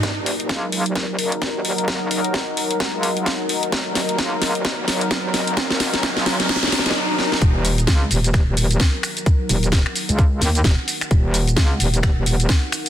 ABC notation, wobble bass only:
X:1
M:4/4
L:1/16
Q:"Swing 16ths" 1/4=130
K:Ebm
V:1 name="Wobble bass" clef=bass
E,,, E,,,3 D,,3 E,,,3 G,,,2 E,,,3 G,,,- | G,,,3 E,,,2 z4 D,,2 D,,2 z3 | E,,, E,,,3 D,,3 E,,,3 G,,,2 E,,,3 G,,,- | G,,,3 E,,,2 D,,2 z8 z |
E,,,4 D,,2 E,,,3 E,,,3 z4 | z2 E,,,3 z2 D,,3 E,,2 E,,, z3 | E,,,4 D,,2 E,,,3 E,,,3 z4 |]